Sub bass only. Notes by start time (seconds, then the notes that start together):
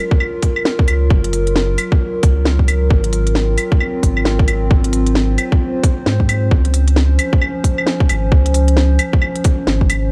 0.88 C#2
1.10 F#1
2.23 C#2
2.90 G#1
4.03 G#1
4.71 G#1
6.07 G#2
6.52 C#2
8.10 G#1
8.32 C#2
9.67 G#1